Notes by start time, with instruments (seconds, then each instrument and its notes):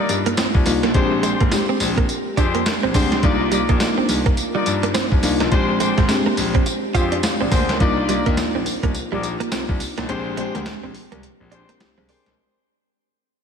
Already playing: fm electric piano A#3 D4 D#4 F4, horn section D#4 F4 A#4
0.00 horn section D5
0.09 grand piano G2, muted clean electric guitar stroke, closed hi-hat, tambourine
0.26 clean electric guitar A#3, closed hi-hat
0.37 clean electric guitar C4, snare, closed hi-hat, tambourine
0.55 grand piano C2, kick
0.66 grand piano C2, fm electric piano A#3 D4 D#4 F4, muted clean electric guitar stroke, open hi-hat, tambourine
0.83 grand piano B1, clean electric guitar A#3, snare, closed hi-hat
0.94 grand piano A#1, fm electric piano G#3 C4 D4 G4, horn section D4 G4 G#4 C5, kick, closed hi-hat
1.12 muted clean electric guitar stroke
1.23 clean electric guitar G#3, horn section D4 G4 G#4 C5, closed hi-hat, tambourine
1.40 grand piano G#1, clean electric guitar A#3, kick, closed hi-hat
1.52 fm electric piano G#3 C4 D4 G4, snare, closed hi-hat, tambourine
1.69 clean electric guitar C4
1.80 grand piano A#1, muted clean electric guitar stroke, open hi-hat, tambourine
1.97 clean electric guitar A#3, kick, closed hi-hat
2.09 muted clean electric guitar stroke, closed hi-hat, tambourine
2.37 grand piano F2, horn section D4 G4 G#4 C5, clean electric guitar D4, kick, closed hi-hat, tambourine
2.55 clean electric guitar A#3, closed hi-hat
2.66 muted clean electric guitar stroke, snare, closed hi-hat, tambourine
2.83 grand piano A#1, clean electric guitar C4
2.94 grand piano D2, fm electric piano G#3 C4 D4 G4, horn section D4 G4 G#4 C5, clean electric guitar D4, kick, open hi-hat, tambourine
3.12 grand piano C#2, snare, closed hi-hat
3.23 grand piano C2, fm electric piano A#3 D4 D#4 F4, horn section D#4 F4 A#4 D5, kick, closed hi-hat
3.41 muted clean electric guitar stroke
3.52 clean electric guitar G3, horn section D#4 F4 A#4 D5, closed hi-hat, tambourine
3.69 grand piano A#1, clean electric guitar A#3, kick, closed hi-hat
3.80 fm electric piano A#3 D4 D#4 F4, snare, closed hi-hat, tambourine
3.98 clean electric guitar C4
4.09 grand piano C2, muted clean electric guitar stroke, open hi-hat, tambourine
4.26 clean electric guitar A#3, kick, closed hi-hat
4.37 closed hi-hat, tambourine
4.55 clean electric guitar G3, horn section D#4 F4 A#4 D5
4.66 grand piano G2, muted clean electric guitar stroke, closed hi-hat, tambourine
4.83 clean electric guitar A#3, closed hi-hat
4.94 clean electric guitar C4, snare, closed hi-hat, tambourine
5.12 grand piano C2, kick
5.23 grand piano C2, fm electric piano A#3 D4 D#4 F4, muted clean electric guitar stroke, open hi-hat, tambourine
5.40 grand piano B1, clean electric guitar A#3, snare, closed hi-hat
5.52 grand piano A#1, fm electric piano G#3 C4 D4 G4, horn section D4 G4 G#4 C5, kick, closed hi-hat
5.69 muted clean electric guitar stroke
5.80 clean electric guitar G#3, horn section D4 G4 G#4 C5, closed hi-hat, tambourine
5.98 grand piano G#1, clean electric guitar G#3, kick, snare, closed hi-hat
6.09 fm electric piano G#3 C4 D4 G4, snare, closed hi-hat, tambourine
6.26 clean electric guitar A#3
6.37 grand piano A#1, muted clean electric guitar stroke, open hi-hat, tambourine
6.54 clean electric guitar C4, kick, closed hi-hat
6.66 muted clean electric guitar stroke, closed hi-hat, tambourine
6.94 grand piano F2, horn section D4 G4 G#4 C5, clean electric guitar F4, kick, closed hi-hat, tambourine
7.12 clean electric guitar D4, closed hi-hat
7.23 fm electric piano F5, muted clean electric guitar stroke, snare, closed hi-hat, tambourine
7.41 grand piano A#1, clean electric guitar C4, fm electric piano D5
7.51 grand piano D2, clean electric guitar A#3, horn section D4 G4 G#4 C5, fm electric piano C5, kick, open hi-hat, tambourine
7.69 grand piano C#2, fm electric piano A#4, snare, closed hi-hat
7.80 grand piano C2, fm electric piano A#3 D4 D#4 F4, horn section D#4 F4 A#4 D5, kick, closed hi-hat
7.98 muted clean electric guitar stroke
8.09 clean electric guitar G3, fm electric piano A#3 D4 D#4 F4, horn section D#4 F4 A#4 D5, closed hi-hat, tambourine
8.26 grand piano D#2, clean electric guitar A#3, fm electric piano A#3 D4 D#4 F4, kick, closed hi-hat
8.37 grand piano A#1, snare, closed hi-hat, tambourine
8.55 grand piano A#1, clean electric guitar C4
8.66 muted clean electric guitar stroke, open hi-hat, tambourine
8.83 grand piano C2, clean electric guitar A#3, kick, closed hi-hat
8.94 grand piano A#1, closed hi-hat, tambourine
9.12 grand piano A#1, clean electric guitar G3, horn section D#4 F4 A#4 D5
9.23 muted clean electric guitar stroke, closed hi-hat, tambourine
9.40 clean electric guitar A#3, closed hi-hat
9.52 grand piano C2, clean electric guitar C4, snare, closed hi-hat, tambourine
9.69 grand piano C2, kick
9.80 muted clean electric guitar stroke, open hi-hat, tambourine
9.98 grand piano B1, clean electric guitar A#3, snare, closed hi-hat
10.09 grand piano A#1, fm electric piano G#3 C4 D4 G4, horn section D4 G4 G#4 C5, closed hi-hat
10.26 muted clean electric guitar stroke
10.37 clean electric guitar G#3, fm electric piano G#3 C4 D4 G4, horn section D4 G4 G#4 C5, closed hi-hat
10.55 grand piano D2, fm electric piano G#3 C4 D4 G4, clean electric guitar A#3, closed hi-hat
10.66 grand piano A#1, snare, closed hi-hat
10.83 grand piano A#1, clean electric guitar C4
10.95 muted clean electric guitar stroke, open hi-hat
11.12 grand piano C2, clean electric guitar A#3, closed hi-hat
11.23 grand piano A#1, muted clean electric guitar stroke, closed hi-hat
11.40 grand piano A#1
11.51 horn section D4 G4 G#4 C5, clean electric guitar D4, closed hi-hat
11.69 clean electric guitar A#3, closed hi-hat
11.80 grand piano C2, fm electric piano G4, muted clean electric guitar stroke, snare, closed hi-hat
11.98 grand piano C2, clean electric guitar C4, fm electric piano G#4
12.09 horn section D4 G4 G#4 C5, clean electric guitar D4, fm electric piano A#4, open hi-hat
12.26 grand piano B1, fm electric piano C5, snare, closed hi-hat